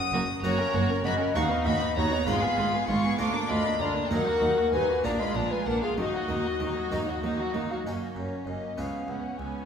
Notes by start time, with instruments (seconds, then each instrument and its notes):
Already playing: harpsichord F#2 A#3 F#4 A#4, flute F#5, violin section D#6
0.13 double bass section F#1, harpsichord F#2, cello section F#2, viola section A#3, violin section F#4
0.43 double bass section F#1, harpsichord F#2 A#3 F#4 C#5, cello section F#2, viola section A#3, violin section F#4 A#5, flute C#5
0.58 viola section C#4, violin section A#4
0.74 double bass section F#1, harpsichord F#2, cello section F#2, viola section A#3, violin section F#4
0.89 viola section C#4, violin section A#4
1.04 double bass section F#1, harpsichord F#2, cello section F#2, viola section A#3, violin section F#4 B5, flute D#5
1.19 viola section C#4, violin section A#4
1.35 cello section D#2, double bass section D#2, harpsichord D#2 F#4 B4, viola section D#4, violin section F#4 C#6, flute F5
1.50 viola section B3, violin section D#4
1.65 harpsichord D#2, cello section D#2, double bass section D#2, viola section D#4, violin section F#4 B5, flute D#5
1.81 viola section B3, violin section D#4
1.95 harpsichord D#2, cello section D#2, double bass section D#2, viola section D#4, violin section F#4 A#5, flute C#5
2.11 viola section B3, violin section D#4
2.26 double bass section G#1, harpsichord G#2 G#3 F4 B4, cello section G#2, viola section G#3, violin section F4 B5, flute F5
2.42 viola section B3, violin section G#4
2.57 double bass section G#1, harpsichord G#2, cello section G#2, viola section G#3, violin section F4
2.73 viola section B3, violin section G#4
2.87 double bass section G#1, cello section G#2, harpsichord G#2, viola section G#3, violin section F4 C#6, flute F5
3.04 viola section B3, violin section G#4
3.18 cello section D2, harpsichord D2 A#3 F4 A#4, double bass section D2, viola section D4, violin section F4 D6, flute F5
3.34 viola section A#3, violin section D4
3.49 double bass section D2, harpsichord D2, cello section D2, viola section D4, violin section F4 B5, flute D#5
3.65 viola section A#3, violin section D4
3.79 cello section D2, harpsichord D2, double bass section D2, viola section D4, violin section F4 A#5, flute D5
3.95 viola section A#3, violin section D4
4.10 cello section D#2, harpsichord D#2 A#3 D#4 A#4, double bass section D#2, viola section F#3, violin section D#4 F#5, flute A#4
4.27 viola section A#3, violin section F#4
4.42 cello section D#2, double bass section D#2, harpsichord D#2, viola section F#3, violin section D#4
4.57 viola section A#3, violin section F#4
4.72 cello section D#2, double bass section D#2, harpsichord D#2, viola section F#3, violin section D#4 G#5, flute B4
4.88 viola section A#3, violin section F#4
5.03 double bass section A#1, harpsichord A#2 A#3 D4 G#4, cello section A#2, viola section A#3, violin section D4 A#5, flute D5
5.19 viola section G#3, violin section F4 B5, flute D#5
5.34 double bass section A#1, cello section A#2, harpsichord A#2, viola section A#3, violin section D4 A#5, flute D5
5.50 viola section G#3, violin section F4 G#5, flute B4
5.66 double bass section A#1, harpsichord A#2, cello section A#2, viola section A#3, violin section D4 F#5, flute A#4
5.82 viola section G#3, violin section F4 F5, flute G#4
5.97 double bass section D#2, cello section D#3, harpsichord D#3, viola section A#3, violin section D#4 D#5, flute F#4
6.13 viola section F#3, violin section F#4
6.29 double bass section D#2, harpsichord D#3, cello section D#3, viola section A#3, violin section D#4
6.45 viola section F#3, violin section F#4
6.60 double bass section D#2, cello section D#3, harpsichord D#3, viola section A#3, violin section D#4
6.76 viola section F#3, violin section F#4
6.91 double bass section D#2, cello section D#3, harpsichord D#3 A#3 D#4 F#4, viola section A#3, violin section D#4
7.07 viola section F#3, violin section F#4
7.23 double bass section D#2, cello section D#3, harpsichord D#3, viola section A#3, violin section D#4
7.39 viola section F#3, violin section F#4
7.54 double bass section D#2, cello section D#3, harpsichord D#3, viola section A#3, violin section D#4
7.70 viola section F#3, violin section F#4 F5, flute F5
7.85 double bass section F#1, cello section F#2, harpsichord F#2 A#3 C#4 F#4, viola section A#3, violin section C#4 D#5, flute D#5
8.16 double bass section F#1, cello section F#2, harpsichord F#2, viola section A#3, violin section C#4 C#5, flute C#5
8.46 double bass section F#1, cello section F#2, harpsichord F#2, viola section A#3, violin section C#4 D#5, flute D#5
8.77 double bass section C#2, cello section C#2, harpsichord C#2 B3 C#4 G#4, viola section B3, violin section C#4 F5, flute F5
9.08 cello section C#2, harpsichord C#2, double bass section C#2, viola section B3, violin section C#4 F#5, flute F#5
9.38 cello section C#2, harpsichord C#2, double bass section C#2, viola section B3, violin section C#4 G#5, flute G#5